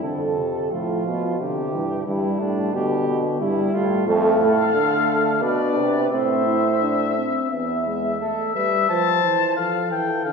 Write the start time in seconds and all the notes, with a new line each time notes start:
0.03 F2 D3 A4
0.37 C3
0.71 A2 F3 F4
1.06 B2
1.39 C3 D3 G4
1.73 G2 E3
2.06 G2 G3 E4
2.40 A2 D4
2.73 B2 D3 G4
3.07 B2
3.40 G2 G3 E4
3.73 A2 F4
4.07 F2 A3 A4 F5
4.40 A2
4.73 D3 A3
5.42 B2 D4 B4 D5
5.76 C3
6.11 A2 C4 C5 E5
6.47 E4
6.82 D4
7.17 C4
7.51 E2 B3 E5
7.87 G#3
8.20 A3 A4 E5
8.54 G3 B4 E5
8.89 F3 C5 A5
9.24 E3
9.57 F3 A4 F5
9.91 E3 G5
10.25 D3 F5